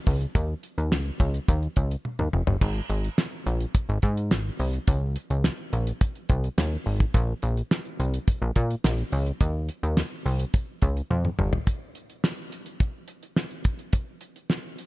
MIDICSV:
0, 0, Header, 1, 3, 480
1, 0, Start_track
1, 0, Key_signature, -4, "major"
1, 0, Tempo, 566038
1, 297, Time_signature, 4, 2, 24, 8
1, 12603, End_track
2, 0, Start_track
2, 0, Title_t, "Analog synth bass"
2, 0, Program_c, 0, 38
2, 58, Note_on_c, 0, 37, 85
2, 223, Note_off_c, 0, 37, 0
2, 297, Note_on_c, 0, 39, 111
2, 462, Note_off_c, 0, 39, 0
2, 659, Note_on_c, 0, 39, 93
2, 778, Note_on_c, 0, 37, 97
2, 791, Note_off_c, 0, 39, 0
2, 942, Note_off_c, 0, 37, 0
2, 1018, Note_on_c, 0, 37, 96
2, 1183, Note_off_c, 0, 37, 0
2, 1259, Note_on_c, 0, 39, 101
2, 1423, Note_off_c, 0, 39, 0
2, 1499, Note_on_c, 0, 37, 96
2, 1663, Note_off_c, 0, 37, 0
2, 1858, Note_on_c, 0, 39, 94
2, 1940, Note_off_c, 0, 39, 0
2, 1978, Note_on_c, 0, 29, 88
2, 2060, Note_off_c, 0, 29, 0
2, 2098, Note_on_c, 0, 31, 99
2, 2180, Note_off_c, 0, 31, 0
2, 2218, Note_on_c, 0, 32, 104
2, 2382, Note_off_c, 0, 32, 0
2, 2456, Note_on_c, 0, 32, 99
2, 2621, Note_off_c, 0, 32, 0
2, 2937, Note_on_c, 0, 34, 102
2, 3102, Note_off_c, 0, 34, 0
2, 3298, Note_on_c, 0, 32, 111
2, 3380, Note_off_c, 0, 32, 0
2, 3418, Note_on_c, 0, 44, 113
2, 3655, Note_on_c, 0, 32, 94
2, 3668, Note_off_c, 0, 44, 0
2, 3821, Note_off_c, 0, 32, 0
2, 3897, Note_on_c, 0, 36, 91
2, 4062, Note_off_c, 0, 36, 0
2, 4135, Note_on_c, 0, 37, 106
2, 4383, Note_off_c, 0, 37, 0
2, 4496, Note_on_c, 0, 37, 88
2, 4661, Note_off_c, 0, 37, 0
2, 4857, Note_on_c, 0, 34, 98
2, 5022, Note_off_c, 0, 34, 0
2, 5338, Note_on_c, 0, 36, 104
2, 5503, Note_off_c, 0, 36, 0
2, 5577, Note_on_c, 0, 39, 95
2, 5742, Note_off_c, 0, 39, 0
2, 5817, Note_on_c, 0, 32, 85
2, 5982, Note_off_c, 0, 32, 0
2, 6057, Note_on_c, 0, 34, 125
2, 6222, Note_off_c, 0, 34, 0
2, 6300, Note_on_c, 0, 34, 101
2, 6464, Note_off_c, 0, 34, 0
2, 6780, Note_on_c, 0, 36, 92
2, 6944, Note_off_c, 0, 36, 0
2, 7137, Note_on_c, 0, 34, 103
2, 7219, Note_off_c, 0, 34, 0
2, 7259, Note_on_c, 0, 46, 110
2, 7423, Note_off_c, 0, 46, 0
2, 7498, Note_on_c, 0, 34, 91
2, 7663, Note_off_c, 0, 34, 0
2, 7737, Note_on_c, 0, 37, 107
2, 7902, Note_off_c, 0, 37, 0
2, 7978, Note_on_c, 0, 39, 101
2, 8225, Note_off_c, 0, 39, 0
2, 8337, Note_on_c, 0, 39, 99
2, 8502, Note_off_c, 0, 39, 0
2, 8697, Note_on_c, 0, 36, 108
2, 8862, Note_off_c, 0, 36, 0
2, 9178, Note_on_c, 0, 37, 103
2, 9343, Note_off_c, 0, 37, 0
2, 9416, Note_on_c, 0, 41, 99
2, 9581, Note_off_c, 0, 41, 0
2, 9656, Note_on_c, 0, 31, 103
2, 9821, Note_off_c, 0, 31, 0
2, 12603, End_track
3, 0, Start_track
3, 0, Title_t, "Drums"
3, 55, Note_on_c, 9, 46, 75
3, 58, Note_on_c, 9, 36, 96
3, 140, Note_off_c, 9, 46, 0
3, 143, Note_off_c, 9, 36, 0
3, 177, Note_on_c, 9, 42, 48
3, 262, Note_off_c, 9, 42, 0
3, 297, Note_on_c, 9, 42, 99
3, 298, Note_on_c, 9, 36, 122
3, 381, Note_off_c, 9, 42, 0
3, 383, Note_off_c, 9, 36, 0
3, 536, Note_on_c, 9, 42, 70
3, 620, Note_off_c, 9, 42, 0
3, 663, Note_on_c, 9, 42, 46
3, 747, Note_off_c, 9, 42, 0
3, 779, Note_on_c, 9, 38, 103
3, 780, Note_on_c, 9, 42, 85
3, 864, Note_off_c, 9, 38, 0
3, 865, Note_off_c, 9, 42, 0
3, 1017, Note_on_c, 9, 36, 98
3, 1021, Note_on_c, 9, 42, 68
3, 1102, Note_off_c, 9, 36, 0
3, 1106, Note_off_c, 9, 42, 0
3, 1138, Note_on_c, 9, 42, 56
3, 1223, Note_off_c, 9, 42, 0
3, 1258, Note_on_c, 9, 42, 82
3, 1259, Note_on_c, 9, 36, 106
3, 1343, Note_off_c, 9, 36, 0
3, 1343, Note_off_c, 9, 42, 0
3, 1380, Note_on_c, 9, 42, 35
3, 1465, Note_off_c, 9, 42, 0
3, 1493, Note_on_c, 9, 42, 68
3, 1499, Note_on_c, 9, 36, 88
3, 1578, Note_off_c, 9, 42, 0
3, 1584, Note_off_c, 9, 36, 0
3, 1622, Note_on_c, 9, 42, 61
3, 1707, Note_off_c, 9, 42, 0
3, 1738, Note_on_c, 9, 48, 51
3, 1823, Note_off_c, 9, 48, 0
3, 1858, Note_on_c, 9, 47, 64
3, 1943, Note_off_c, 9, 47, 0
3, 1979, Note_on_c, 9, 45, 77
3, 2064, Note_off_c, 9, 45, 0
3, 2096, Note_on_c, 9, 43, 97
3, 2181, Note_off_c, 9, 43, 0
3, 2217, Note_on_c, 9, 36, 107
3, 2217, Note_on_c, 9, 49, 103
3, 2301, Note_off_c, 9, 36, 0
3, 2301, Note_off_c, 9, 49, 0
3, 2454, Note_on_c, 9, 42, 73
3, 2538, Note_off_c, 9, 42, 0
3, 2582, Note_on_c, 9, 42, 51
3, 2667, Note_off_c, 9, 42, 0
3, 2696, Note_on_c, 9, 38, 109
3, 2698, Note_on_c, 9, 42, 91
3, 2781, Note_off_c, 9, 38, 0
3, 2783, Note_off_c, 9, 42, 0
3, 2940, Note_on_c, 9, 42, 73
3, 3025, Note_off_c, 9, 42, 0
3, 3057, Note_on_c, 9, 42, 63
3, 3141, Note_off_c, 9, 42, 0
3, 3177, Note_on_c, 9, 36, 119
3, 3178, Note_on_c, 9, 42, 93
3, 3262, Note_off_c, 9, 36, 0
3, 3263, Note_off_c, 9, 42, 0
3, 3300, Note_on_c, 9, 42, 37
3, 3385, Note_off_c, 9, 42, 0
3, 3412, Note_on_c, 9, 42, 78
3, 3417, Note_on_c, 9, 36, 84
3, 3497, Note_off_c, 9, 42, 0
3, 3502, Note_off_c, 9, 36, 0
3, 3540, Note_on_c, 9, 42, 62
3, 3624, Note_off_c, 9, 42, 0
3, 3656, Note_on_c, 9, 42, 99
3, 3657, Note_on_c, 9, 38, 117
3, 3740, Note_off_c, 9, 42, 0
3, 3742, Note_off_c, 9, 38, 0
3, 3895, Note_on_c, 9, 46, 78
3, 3979, Note_off_c, 9, 46, 0
3, 4016, Note_on_c, 9, 42, 54
3, 4101, Note_off_c, 9, 42, 0
3, 4133, Note_on_c, 9, 42, 96
3, 4136, Note_on_c, 9, 36, 113
3, 4218, Note_off_c, 9, 42, 0
3, 4220, Note_off_c, 9, 36, 0
3, 4373, Note_on_c, 9, 42, 76
3, 4458, Note_off_c, 9, 42, 0
3, 4498, Note_on_c, 9, 42, 50
3, 4583, Note_off_c, 9, 42, 0
3, 4615, Note_on_c, 9, 38, 111
3, 4617, Note_on_c, 9, 42, 87
3, 4700, Note_off_c, 9, 38, 0
3, 4701, Note_off_c, 9, 42, 0
3, 4859, Note_on_c, 9, 42, 75
3, 4944, Note_off_c, 9, 42, 0
3, 4977, Note_on_c, 9, 42, 61
3, 5062, Note_off_c, 9, 42, 0
3, 5097, Note_on_c, 9, 42, 84
3, 5098, Note_on_c, 9, 36, 106
3, 5181, Note_off_c, 9, 42, 0
3, 5183, Note_off_c, 9, 36, 0
3, 5219, Note_on_c, 9, 42, 36
3, 5304, Note_off_c, 9, 42, 0
3, 5334, Note_on_c, 9, 42, 77
3, 5339, Note_on_c, 9, 36, 92
3, 5419, Note_off_c, 9, 42, 0
3, 5424, Note_off_c, 9, 36, 0
3, 5461, Note_on_c, 9, 42, 63
3, 5545, Note_off_c, 9, 42, 0
3, 5579, Note_on_c, 9, 42, 104
3, 5580, Note_on_c, 9, 38, 120
3, 5664, Note_off_c, 9, 42, 0
3, 5665, Note_off_c, 9, 38, 0
3, 5816, Note_on_c, 9, 46, 77
3, 5901, Note_off_c, 9, 46, 0
3, 5939, Note_on_c, 9, 36, 107
3, 5939, Note_on_c, 9, 42, 55
3, 6024, Note_off_c, 9, 36, 0
3, 6024, Note_off_c, 9, 42, 0
3, 6056, Note_on_c, 9, 42, 102
3, 6058, Note_on_c, 9, 36, 109
3, 6141, Note_off_c, 9, 42, 0
3, 6143, Note_off_c, 9, 36, 0
3, 6295, Note_on_c, 9, 42, 65
3, 6380, Note_off_c, 9, 42, 0
3, 6422, Note_on_c, 9, 42, 50
3, 6506, Note_off_c, 9, 42, 0
3, 6540, Note_on_c, 9, 38, 119
3, 6541, Note_on_c, 9, 42, 90
3, 6624, Note_off_c, 9, 38, 0
3, 6626, Note_off_c, 9, 42, 0
3, 6660, Note_on_c, 9, 42, 35
3, 6744, Note_off_c, 9, 42, 0
3, 6783, Note_on_c, 9, 42, 73
3, 6867, Note_off_c, 9, 42, 0
3, 6900, Note_on_c, 9, 42, 67
3, 6985, Note_off_c, 9, 42, 0
3, 7019, Note_on_c, 9, 36, 115
3, 7019, Note_on_c, 9, 42, 90
3, 7104, Note_off_c, 9, 36, 0
3, 7104, Note_off_c, 9, 42, 0
3, 7255, Note_on_c, 9, 42, 86
3, 7260, Note_on_c, 9, 36, 88
3, 7340, Note_off_c, 9, 42, 0
3, 7344, Note_off_c, 9, 36, 0
3, 7382, Note_on_c, 9, 42, 59
3, 7467, Note_off_c, 9, 42, 0
3, 7498, Note_on_c, 9, 42, 89
3, 7499, Note_on_c, 9, 38, 105
3, 7583, Note_off_c, 9, 42, 0
3, 7584, Note_off_c, 9, 38, 0
3, 7617, Note_on_c, 9, 42, 38
3, 7702, Note_off_c, 9, 42, 0
3, 7735, Note_on_c, 9, 46, 70
3, 7820, Note_off_c, 9, 46, 0
3, 7857, Note_on_c, 9, 42, 53
3, 7942, Note_off_c, 9, 42, 0
3, 7976, Note_on_c, 9, 42, 99
3, 7977, Note_on_c, 9, 36, 109
3, 8061, Note_off_c, 9, 42, 0
3, 8062, Note_off_c, 9, 36, 0
3, 8214, Note_on_c, 9, 42, 74
3, 8299, Note_off_c, 9, 42, 0
3, 8339, Note_on_c, 9, 42, 55
3, 8424, Note_off_c, 9, 42, 0
3, 8455, Note_on_c, 9, 38, 122
3, 8456, Note_on_c, 9, 42, 89
3, 8540, Note_off_c, 9, 38, 0
3, 8541, Note_off_c, 9, 42, 0
3, 8698, Note_on_c, 9, 46, 72
3, 8783, Note_off_c, 9, 46, 0
3, 8815, Note_on_c, 9, 42, 64
3, 8900, Note_off_c, 9, 42, 0
3, 8935, Note_on_c, 9, 42, 90
3, 8937, Note_on_c, 9, 36, 118
3, 9020, Note_off_c, 9, 42, 0
3, 9022, Note_off_c, 9, 36, 0
3, 9173, Note_on_c, 9, 42, 78
3, 9178, Note_on_c, 9, 36, 91
3, 9258, Note_off_c, 9, 42, 0
3, 9263, Note_off_c, 9, 36, 0
3, 9301, Note_on_c, 9, 42, 54
3, 9386, Note_off_c, 9, 42, 0
3, 9419, Note_on_c, 9, 48, 59
3, 9504, Note_off_c, 9, 48, 0
3, 9538, Note_on_c, 9, 47, 63
3, 9623, Note_off_c, 9, 47, 0
3, 9656, Note_on_c, 9, 45, 82
3, 9741, Note_off_c, 9, 45, 0
3, 9775, Note_on_c, 9, 43, 105
3, 9860, Note_off_c, 9, 43, 0
3, 9895, Note_on_c, 9, 42, 91
3, 9897, Note_on_c, 9, 36, 109
3, 9980, Note_off_c, 9, 42, 0
3, 9982, Note_off_c, 9, 36, 0
3, 10134, Note_on_c, 9, 42, 61
3, 10219, Note_off_c, 9, 42, 0
3, 10258, Note_on_c, 9, 42, 47
3, 10343, Note_off_c, 9, 42, 0
3, 10378, Note_on_c, 9, 38, 108
3, 10462, Note_off_c, 9, 38, 0
3, 10619, Note_on_c, 9, 42, 71
3, 10704, Note_off_c, 9, 42, 0
3, 10735, Note_on_c, 9, 42, 56
3, 10820, Note_off_c, 9, 42, 0
3, 10855, Note_on_c, 9, 42, 78
3, 10857, Note_on_c, 9, 36, 113
3, 10940, Note_off_c, 9, 42, 0
3, 10942, Note_off_c, 9, 36, 0
3, 11089, Note_on_c, 9, 42, 72
3, 11174, Note_off_c, 9, 42, 0
3, 11216, Note_on_c, 9, 42, 56
3, 11301, Note_off_c, 9, 42, 0
3, 11333, Note_on_c, 9, 38, 102
3, 11418, Note_off_c, 9, 38, 0
3, 11454, Note_on_c, 9, 42, 35
3, 11538, Note_off_c, 9, 42, 0
3, 11571, Note_on_c, 9, 42, 69
3, 11575, Note_on_c, 9, 36, 98
3, 11655, Note_off_c, 9, 42, 0
3, 11660, Note_off_c, 9, 36, 0
3, 11693, Note_on_c, 9, 42, 47
3, 11778, Note_off_c, 9, 42, 0
3, 11809, Note_on_c, 9, 42, 100
3, 11814, Note_on_c, 9, 36, 112
3, 11894, Note_off_c, 9, 42, 0
3, 11899, Note_off_c, 9, 36, 0
3, 12048, Note_on_c, 9, 42, 70
3, 12133, Note_off_c, 9, 42, 0
3, 12176, Note_on_c, 9, 42, 46
3, 12261, Note_off_c, 9, 42, 0
3, 12293, Note_on_c, 9, 38, 96
3, 12378, Note_off_c, 9, 38, 0
3, 12537, Note_on_c, 9, 42, 68
3, 12603, Note_off_c, 9, 42, 0
3, 12603, End_track
0, 0, End_of_file